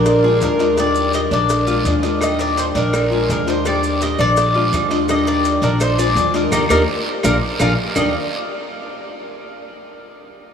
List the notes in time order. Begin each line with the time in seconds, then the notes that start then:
Already playing: A#1 D4 A#4
0.06 muted nylon-string guitar stroke, cowbell, long guiro, maracas
0.23 G#3 D4 F4 G#4
0.41 D#2 F3 G#3 D4 F4 A#4, cowbell, short guiro, maracas
0.59 G#3 D4 F4 D#5, cowbell, short guiro, maracas
0.77 D#3 G3 D4 G4 D5, cowbell, long guiro, maracas
0.95 maracas
1.13 G4 D#5, cowbell, short guiro, maracas
1.31 A#1 D4 D5, short guiro, maracas
1.49 muted nylon-string guitar stroke, cowbell, long guiro, maracas
1.67 G#3 D4 F4, maracas
1.85 D#2 F3 G#3 D4 F4, cowbell, short guiro, maracas
2.03 G#3 D4 F4 D#5, cowbell, short guiro, maracas
2.20 D#3 G3 D4 G4 D#5, cowbell, long guiro, claves, maracas
2.39 A#4 D5, cowbell, maracas
2.57 C5, cowbell, short guiro, maracas
2.75 A#1 D4 A#4, cowbell, short guiro, maracas
2.93 muted nylon-string guitar stroke, cowbell, long guiro, claves, maracas
3.10 G#3 D4 F4 G#4
3.28 D#2 F3 G#3 D4 F4 A#4, cowbell, short guiro, maracas
3.47 G#3 D4 F4 C5 D#5, cowbell, short guiro, maracas
3.64 D#3 G3 D4 G4 D5, cowbell, long guiro, claves, maracas
3.83 maracas
4.01 G4 D#5, cowbell, short guiro, maracas
4.19 A#1 D4 D5, short guiro, claves, maracas
4.37 muted nylon-string guitar stroke, cowbell, long guiro, maracas
4.55 G#3 D4 F4
4.72 D#2 F3 G#3 D4 F4, cowbell, short guiro, claves, maracas
4.90 G#3 D4 F4 D#5, cowbell, short guiro, maracas
5.08 D#3 G3 D4 G4 D#5, cowbell, long guiro, claves, maracas
5.26 A#4 D5, cowbell
5.45 cowbell, short guiro, maracas
5.62 A#1 D4 A#4, cowbell, short guiro, maracas
5.80 C5, muted nylon-string guitar stroke, cowbell, long guiro, claves, maracas
5.98 G#3 D4 F4 G#4 D5, maracas
6.15 D#2 F3 G#3 D4 F4, cowbell, short guiro, maracas
6.34 G#3 D4 F4 A#4 D#5, cowbell, short guiro, maracas
6.51 D#2 A#3 D4 D#4 G4 A#4 D5 D#5, cowbell, long guiro, claves, maracas
6.69 D#2 A#3 D4 D#4 G4 A#4 D5 D#5, cowbell, long guiro, claves, maracas
7.23 A#1 A#3 D4 F4 G#4 A#4 D5 F5, cowbell, long guiro, claves, maracas
7.60 A#1 A#3 D4 F4 G#4 A#4 D5 F5, cowbell, long guiro, claves, maracas
7.95 D#2 D#3 G3 D4 D#4 G4 A#4 D5 D#5, low bongo, long guiro, claves, maracas